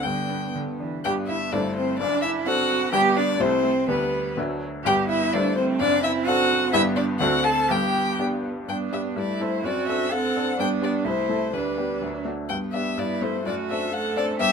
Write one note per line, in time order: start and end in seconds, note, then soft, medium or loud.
0.03 1.02 G2 soft
0.03 0.49 D3 soft
0.03 0.85 B3 soft
0.03 0.54 G5 medium
0.29 0.70 B3 soft
0.55 0.63 D3 soft
0.55 0.96 D3 soft
0.80 1.04 E3 soft
0.80 1.04 D4 soft
1.04 1.51 G1 soft
1.04 1.51 G2 soft
1.04 1.49 B3 soft
1.04 1.54 B3 soft
1.04 1.49 D4 soft
1.04 1.13 G4 medium
1.04 1.49 G4 soft
1.04 1.12 G5 medium
1.28 1.37 E4 medium
1.28 1.54 E5 medium
1.52 1.98 G1 soft
1.52 1.98 G2 soft
1.52 2.01 A3 soft
1.52 1.96 C4 soft
1.52 1.61 D4 soft
1.52 1.96 E4 soft
1.52 1.96 A4 soft
1.52 1.75 D5 medium
1.76 1.99 C4 medium
1.76 1.98 C5 medium
1.99 2.90 F#1 soft
1.99 2.90 F#2 medium
1.99 2.48 D4 soft
1.99 2.24 D4 medium
1.99 2.21 D5 medium
2.22 2.49 E4 medium
2.22 2.30 E5 medium
2.46 2.92 C4 medium
2.46 2.89 C4 soft
2.46 2.89 D4 soft
2.46 2.92 F#4 medium
2.46 2.89 A4 soft
2.46 2.92 F#5 medium
2.92 3.38 G1 medium
2.92 3.38 G2 medium
2.92 3.36 B3 soft
2.92 3.39 B3 medium
2.92 3.36 D4 soft
2.92 3.18 G4 medium
2.92 3.36 G4 soft
2.92 3.01 G5 loud
3.15 3.40 D4 medium
3.15 3.42 D5 medium
3.39 3.87 C2 medium
3.39 3.87 C3 soft
3.39 3.63 A3 medium
3.39 3.84 A3 soft
3.39 3.89 C4 medium
3.39 3.85 E4 soft
3.39 3.85 A4 soft
3.39 3.89 C5 medium
3.64 3.72 A3 medium
3.88 4.36 D2 soft
3.88 4.35 D3 soft
3.88 4.39 G3 medium
3.88 4.37 B3 medium
3.88 4.33 B3 soft
3.88 4.33 D4 soft
3.88 4.34 G4 soft
3.88 4.37 B4 medium
4.37 4.84 D2 soft
4.37 4.84 D3 soft
4.37 4.65 F#3 soft
4.37 4.82 A3 soft
4.37 4.82 D4 soft
4.37 4.82 F#4 soft
4.84 5.32 G1 soft
4.84 5.32 G2 soft
4.84 5.29 B3 soft
4.84 5.35 B3 soft
4.84 5.30 D4 soft
4.84 5.07 G4 medium
4.84 5.30 G4 soft
4.84 4.94 G5 medium
5.08 5.34 E4 medium
5.08 5.35 E5 medium
5.33 5.80 G1 soft
5.33 5.80 G2 medium
5.33 5.82 A3 soft
5.33 5.77 C4 soft
5.33 5.56 D4 medium
5.33 5.77 E4 soft
5.33 5.78 A4 soft
5.33 5.56 D5 medium
5.57 5.81 C4 medium
5.57 5.65 C5 medium
5.80 6.71 F#1 soft
5.80 6.71 F#2 medium
5.80 6.75 C4 medium
5.80 6.02 D4 medium
5.80 6.03 D5 medium
6.03 6.27 E4 medium
6.03 6.12 E5 medium
6.25 6.70 C4 soft
6.25 6.70 D4 soft
6.25 6.71 F#4 medium
6.25 6.70 A4 medium
6.25 6.72 F#5 loud
6.72 7.20 G1 medium
6.72 7.20 G2 medium
6.72 7.17 B3 soft
6.72 7.22 B3 medium
6.72 7.17 D4 soft
6.72 6.80 E4 medium
6.72 7.17 G4 soft
6.72 6.81 E5 loud
6.96 7.04 D4 medium
6.96 7.04 D5 medium
7.19 7.69 D2 medium
7.19 7.69 D3 medium
7.19 7.66 C4 soft
7.19 7.71 C4 medium
7.19 7.66 D4 soft
7.19 7.45 F#4 medium
7.19 7.67 A4 soft
7.19 7.46 F#5 loud
7.44 7.70 A4 medium
7.44 7.73 A5 medium
7.69 8.66 G1 soft
7.69 8.66 G2 medium
7.69 8.49 B3 medium
7.69 8.19 G4 medium
7.69 8.21 G5 medium
8.19 8.65 B3 soft
8.19 8.65 D4 soft
8.19 8.66 G4 soft
8.68 8.92 G2 soft
8.68 9.19 B3 soft
8.68 9.17 D4 soft
8.68 8.77 G5 medium
8.91 9.14 B3 soft
8.91 9.14 D4 soft
8.91 9.14 G4 soft
8.91 9.01 E5 soft
9.16 9.40 G2 soft
9.16 9.67 A3 soft
9.16 9.66 E4 soft
9.16 9.43 D5 soft
9.40 9.62 C4 soft
9.40 9.62 E4 soft
9.40 9.62 A4 soft
9.40 9.67 C5 medium
9.63 9.87 F#2 soft
9.63 10.12 C4 soft
9.63 10.12 F#4 medium
9.63 9.87 D5 medium
9.88 10.31 C4 soft
9.88 10.32 D4 soft
9.88 10.32 A4 soft
9.88 10.14 E5 medium
10.10 10.59 C4 medium
10.10 10.57 A4 medium
10.10 10.59 F#5 medium
10.36 10.57 C4 soft
10.36 10.57 D4 soft
10.36 10.57 A4 soft
10.57 10.82 G2 soft
10.57 11.08 B3 soft
10.57 11.06 D4 medium
10.57 10.68 G5 medium
10.82 11.03 B3 soft
10.82 11.03 D4 soft
10.82 11.03 G4 soft
10.82 10.92 D5 medium
11.04 11.28 C2 soft
11.04 11.56 A3 soft
11.04 11.53 E4 medium
11.04 11.55 C5 medium
11.29 11.51 A3 soft
11.29 11.51 E4 soft
11.29 11.51 A4 soft
11.53 11.77 D2 soft
11.53 12.03 G3 soft
11.53 12.25 D4 soft
11.53 12.02 B4 medium
11.77 11.99 B3 soft
11.77 12.00 D4 soft
11.77 12.00 G4 soft
12.02 12.25 D2 soft
12.02 12.30 F#3 soft
12.25 12.47 A3 soft
12.25 12.47 D4 soft
12.25 12.47 F#4 soft
12.49 12.74 G2 soft
12.49 13.42 B3 soft
12.49 12.57 G5 medium
12.73 12.96 B3 soft
12.73 12.96 D4 soft
12.73 12.96 G4 soft
12.73 13.01 E5 medium
12.97 13.21 G2 soft
12.97 13.42 E4 soft
12.97 13.25 D5 soft
13.21 13.43 A3 soft
13.21 13.44 E4 soft
13.21 13.44 A4 soft
13.21 13.46 C5 medium
13.45 13.69 F#2 soft
13.45 13.92 A3 soft
13.45 13.92 F#4 soft
13.45 13.54 D5 medium
13.70 14.13 C4 soft
13.70 14.13 D4 soft
13.70 14.13 A4 soft
13.70 13.95 E5 medium
13.93 14.41 A3 soft
13.93 14.39 A4 medium
13.93 14.16 F#5 medium
14.17 14.38 C4 soft
14.17 14.38 D4 soft
14.17 14.38 A4 soft
14.17 14.25 D5 medium
14.39 14.52 G2 medium
14.39 14.52 B3 medium
14.39 14.52 G4 medium
14.39 14.52 E5 loud